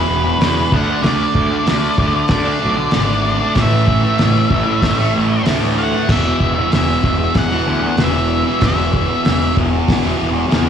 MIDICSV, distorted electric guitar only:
0, 0, Header, 1, 3, 480
1, 0, Start_track
1, 0, Tempo, 630915
1, 794, Time_signature, 4, 2, 24, 8
1, 8135, End_track
2, 0, Start_track
2, 0, Title_t, "Distorted electric guitar"
2, 0, Program_c, 0, 30
2, 50, Note_on_c, 0, 40, 74
2, 64, Note_on_c, 0, 47, 77
2, 71, Note_on_c, 0, 52, 79
2, 177, Note_off_c, 0, 52, 0
2, 183, Note_off_c, 0, 47, 0
2, 290, Note_off_c, 0, 40, 0
2, 299, Note_on_c, 0, 40, 92
2, 313, Note_on_c, 0, 47, 109
2, 323, Note_on_c, 0, 52, 105
2, 423, Note_off_c, 0, 52, 0
2, 433, Note_on_c, 0, 52, 69
2, 450, Note_off_c, 0, 47, 0
2, 459, Note_on_c, 0, 47, 68
2, 532, Note_off_c, 0, 40, 0
2, 539, Note_off_c, 0, 52, 0
2, 548, Note_off_c, 0, 47, 0
2, 551, Note_on_c, 0, 50, 88
2, 562, Note_on_c, 0, 57, 101
2, 569, Note_on_c, 0, 62, 115
2, 657, Note_off_c, 0, 62, 0
2, 666, Note_on_c, 0, 62, 80
2, 688, Note_off_c, 0, 57, 0
2, 691, Note_on_c, 0, 57, 70
2, 769, Note_off_c, 0, 50, 0
2, 778, Note_on_c, 0, 50, 97
2, 791, Note_off_c, 0, 62, 0
2, 794, Note_off_c, 0, 57, 0
2, 797, Note_on_c, 0, 57, 98
2, 800, Note_on_c, 0, 62, 100
2, 1127, Note_off_c, 0, 62, 0
2, 1136, Note_on_c, 0, 62, 75
2, 1158, Note_off_c, 0, 57, 0
2, 1161, Note_on_c, 0, 57, 64
2, 1236, Note_off_c, 0, 50, 0
2, 1245, Note_on_c, 0, 50, 95
2, 1251, Note_off_c, 0, 57, 0
2, 1254, Note_on_c, 0, 57, 104
2, 1260, Note_off_c, 0, 62, 0
2, 1269, Note_on_c, 0, 62, 114
2, 1487, Note_off_c, 0, 50, 0
2, 1496, Note_on_c, 0, 50, 74
2, 1501, Note_off_c, 0, 57, 0
2, 1504, Note_on_c, 0, 57, 74
2, 1515, Note_off_c, 0, 62, 0
2, 1524, Note_on_c, 0, 62, 82
2, 1608, Note_off_c, 0, 62, 0
2, 1619, Note_off_c, 0, 57, 0
2, 1857, Note_on_c, 0, 62, 69
2, 1865, Note_off_c, 0, 50, 0
2, 1884, Note_on_c, 0, 57, 50
2, 1969, Note_off_c, 0, 57, 0
2, 1975, Note_on_c, 0, 50, 74
2, 1978, Note_on_c, 0, 57, 87
2, 1989, Note_off_c, 0, 62, 0
2, 1998, Note_on_c, 0, 62, 89
2, 2096, Note_off_c, 0, 62, 0
2, 2102, Note_off_c, 0, 57, 0
2, 2216, Note_off_c, 0, 50, 0
2, 2225, Note_on_c, 0, 50, 89
2, 2233, Note_on_c, 0, 57, 99
2, 2247, Note_on_c, 0, 62, 99
2, 2323, Note_off_c, 0, 62, 0
2, 2332, Note_on_c, 0, 62, 83
2, 2344, Note_off_c, 0, 57, 0
2, 2353, Note_on_c, 0, 57, 62
2, 2559, Note_off_c, 0, 62, 0
2, 2569, Note_on_c, 0, 62, 86
2, 2587, Note_off_c, 0, 57, 0
2, 2589, Note_off_c, 0, 50, 0
2, 2596, Note_on_c, 0, 57, 64
2, 2687, Note_off_c, 0, 62, 0
2, 2701, Note_off_c, 0, 57, 0
2, 2701, Note_on_c, 0, 45, 102
2, 2718, Note_on_c, 0, 52, 96
2, 2731, Note_on_c, 0, 57, 104
2, 3048, Note_off_c, 0, 57, 0
2, 3057, Note_on_c, 0, 57, 80
2, 3074, Note_off_c, 0, 52, 0
2, 3077, Note_on_c, 0, 52, 72
2, 3181, Note_off_c, 0, 45, 0
2, 3190, Note_on_c, 0, 45, 98
2, 3195, Note_off_c, 0, 57, 0
2, 3196, Note_off_c, 0, 52, 0
2, 3199, Note_on_c, 0, 52, 113
2, 3204, Note_on_c, 0, 57, 108
2, 3408, Note_off_c, 0, 45, 0
2, 3418, Note_on_c, 0, 45, 81
2, 3427, Note_off_c, 0, 52, 0
2, 3429, Note_off_c, 0, 57, 0
2, 3430, Note_on_c, 0, 52, 80
2, 3438, Note_on_c, 0, 57, 81
2, 3541, Note_off_c, 0, 57, 0
2, 3551, Note_off_c, 0, 52, 0
2, 3784, Note_on_c, 0, 57, 67
2, 3787, Note_off_c, 0, 45, 0
2, 3804, Note_on_c, 0, 52, 58
2, 3899, Note_on_c, 0, 45, 77
2, 3905, Note_off_c, 0, 52, 0
2, 3908, Note_on_c, 0, 52, 77
2, 3913, Note_off_c, 0, 57, 0
2, 3922, Note_on_c, 0, 57, 76
2, 4006, Note_off_c, 0, 57, 0
2, 4022, Note_off_c, 0, 52, 0
2, 4122, Note_off_c, 0, 45, 0
2, 4131, Note_on_c, 0, 45, 97
2, 4145, Note_on_c, 0, 52, 99
2, 4158, Note_on_c, 0, 57, 107
2, 4246, Note_off_c, 0, 57, 0
2, 4255, Note_on_c, 0, 57, 67
2, 4280, Note_off_c, 0, 52, 0
2, 4283, Note_on_c, 0, 52, 59
2, 4492, Note_off_c, 0, 57, 0
2, 4501, Note_on_c, 0, 57, 85
2, 4504, Note_off_c, 0, 45, 0
2, 4520, Note_off_c, 0, 52, 0
2, 4523, Note_on_c, 0, 52, 70
2, 4615, Note_off_c, 0, 57, 0
2, 4617, Note_on_c, 0, 40, 86
2, 4624, Note_on_c, 0, 47, 101
2, 4634, Note_off_c, 0, 52, 0
2, 4637, Note_on_c, 0, 52, 109
2, 4979, Note_off_c, 0, 52, 0
2, 4982, Note_on_c, 0, 52, 76
2, 4999, Note_off_c, 0, 47, 0
2, 5008, Note_on_c, 0, 47, 59
2, 5096, Note_off_c, 0, 40, 0
2, 5099, Note_on_c, 0, 40, 102
2, 5101, Note_off_c, 0, 47, 0
2, 5110, Note_on_c, 0, 47, 101
2, 5119, Note_off_c, 0, 52, 0
2, 5123, Note_on_c, 0, 52, 106
2, 5323, Note_off_c, 0, 40, 0
2, 5332, Note_on_c, 0, 40, 81
2, 5342, Note_off_c, 0, 47, 0
2, 5349, Note_off_c, 0, 52, 0
2, 5351, Note_on_c, 0, 47, 78
2, 5358, Note_on_c, 0, 52, 85
2, 5455, Note_off_c, 0, 52, 0
2, 5463, Note_off_c, 0, 47, 0
2, 5701, Note_on_c, 0, 52, 70
2, 5705, Note_off_c, 0, 40, 0
2, 5725, Note_on_c, 0, 47, 50
2, 5817, Note_off_c, 0, 47, 0
2, 5819, Note_on_c, 0, 40, 79
2, 5827, Note_on_c, 0, 47, 88
2, 5835, Note_off_c, 0, 52, 0
2, 5844, Note_on_c, 0, 52, 92
2, 5944, Note_off_c, 0, 52, 0
2, 5948, Note_off_c, 0, 47, 0
2, 6055, Note_off_c, 0, 40, 0
2, 6064, Note_on_c, 0, 40, 97
2, 6075, Note_on_c, 0, 47, 95
2, 6088, Note_on_c, 0, 52, 97
2, 6171, Note_off_c, 0, 52, 0
2, 6180, Note_on_c, 0, 52, 79
2, 6195, Note_off_c, 0, 47, 0
2, 6204, Note_on_c, 0, 47, 56
2, 6403, Note_off_c, 0, 52, 0
2, 6413, Note_on_c, 0, 52, 86
2, 6432, Note_off_c, 0, 40, 0
2, 6432, Note_off_c, 0, 47, 0
2, 6441, Note_on_c, 0, 47, 67
2, 6531, Note_on_c, 0, 40, 87
2, 6538, Note_off_c, 0, 47, 0
2, 6544, Note_off_c, 0, 52, 0
2, 6547, Note_on_c, 0, 47, 89
2, 6553, Note_on_c, 0, 52, 110
2, 6894, Note_off_c, 0, 52, 0
2, 6904, Note_on_c, 0, 52, 87
2, 6914, Note_off_c, 0, 47, 0
2, 6923, Note_on_c, 0, 47, 68
2, 7025, Note_off_c, 0, 40, 0
2, 7032, Note_off_c, 0, 47, 0
2, 7034, Note_on_c, 0, 40, 99
2, 7041, Note_on_c, 0, 47, 111
2, 7046, Note_off_c, 0, 52, 0
2, 7056, Note_on_c, 0, 52, 121
2, 7251, Note_off_c, 0, 40, 0
2, 7260, Note_on_c, 0, 40, 72
2, 7263, Note_off_c, 0, 47, 0
2, 7272, Note_on_c, 0, 47, 74
2, 7273, Note_off_c, 0, 52, 0
2, 7283, Note_on_c, 0, 52, 78
2, 7379, Note_off_c, 0, 52, 0
2, 7387, Note_off_c, 0, 47, 0
2, 7621, Note_on_c, 0, 52, 67
2, 7630, Note_off_c, 0, 40, 0
2, 7639, Note_on_c, 0, 47, 55
2, 7729, Note_on_c, 0, 40, 74
2, 7730, Note_off_c, 0, 47, 0
2, 7739, Note_on_c, 0, 47, 86
2, 7746, Note_off_c, 0, 52, 0
2, 7755, Note_on_c, 0, 52, 92
2, 7838, Note_off_c, 0, 47, 0
2, 7838, Note_off_c, 0, 52, 0
2, 7959, Note_off_c, 0, 40, 0
2, 7969, Note_on_c, 0, 40, 85
2, 7978, Note_on_c, 0, 47, 94
2, 7986, Note_on_c, 0, 52, 108
2, 8080, Note_off_c, 0, 52, 0
2, 8090, Note_on_c, 0, 52, 76
2, 8099, Note_off_c, 0, 47, 0
2, 8108, Note_on_c, 0, 47, 61
2, 8135, Note_off_c, 0, 40, 0
2, 8135, Note_off_c, 0, 47, 0
2, 8135, Note_off_c, 0, 52, 0
2, 8135, End_track
3, 0, Start_track
3, 0, Title_t, "Muted distorted electric guitar strokes"
3, 186, Note_on_c, 9, 29, 56
3, 262, Note_off_c, 9, 29, 0
3, 1617, Note_on_c, 9, 29, 53
3, 1693, Note_off_c, 9, 29, 0
3, 2105, Note_on_c, 9, 29, 54
3, 2181, Note_off_c, 9, 29, 0
3, 3550, Note_on_c, 9, 29, 52
3, 3626, Note_off_c, 9, 29, 0
3, 4015, Note_on_c, 9, 29, 56
3, 4091, Note_off_c, 9, 29, 0
3, 5464, Note_on_c, 9, 29, 56
3, 5540, Note_off_c, 9, 29, 0
3, 5953, Note_on_c, 9, 29, 55
3, 6029, Note_off_c, 9, 29, 0
3, 7388, Note_on_c, 9, 29, 53
3, 7465, Note_off_c, 9, 29, 0
3, 7847, Note_on_c, 9, 29, 48
3, 7923, Note_off_c, 9, 29, 0
3, 8135, End_track
0, 0, End_of_file